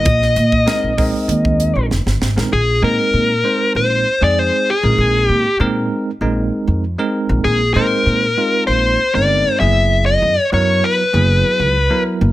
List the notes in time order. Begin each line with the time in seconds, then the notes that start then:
Already playing: D#5
0.05 A#1, kick, closed hi-hat
0.22 snare
0.36 A#2, closed hi-hat
0.52 kick
0.66 G#3 C4 D#4 A#4, snare, closed hi-hat
0.84 A#1
0.98 G#3 C4 D#4 A#4, kick, open hi-hat
1.28 D#2, closed hi-hat
1.45 kick
1.60 closed hi-hat
1.75 A#1
1.91 F1, snare
2.06 G1, snare
2.22 G#1, snare
2.36 A#1 G#3 C4 D#4 A#4, snare
2.53 A#1 G#4
2.82 A#2 G#3 C4 D#4 A#4
3.13 A#2
3.44 G#3 C4 D#4 C5
3.75 A#1 C5
4.21 F2 G#3 C4 D#4 G#4 D5
4.39 C5
4.70 G#4
4.83 A#1 G#3 C4 D#4 A#4
4.98 A#1
5.29 A#2 G4
5.60 A#2 G#3 C4 D#4 A#4
6.21 A#1 G#3 C4 D#4 A#4
6.67 F2
6.98 G#3 C4 D#4 A#4
7.29 A#1
7.44 A#1 G#4
7.74 A#2 G#3 C4 D#4 A#4 C5
8.06 A#2
8.37 G#3 C4 D#4 F4
8.67 A#1 C5
9.14 G1 G#3 C4 D#4 A#4 D5
9.60 F#1 F#3 B3 E4 G#4 E5
10.06 D#5
10.22 F#2
10.52 F#2 F#3 B3 E4 A#4 C#5
10.84 B4
11.13 F#1 F#3 B3 E4 G#4
11.59 C#2
11.90 F#3 B3 E4 A#4
12.21 F#1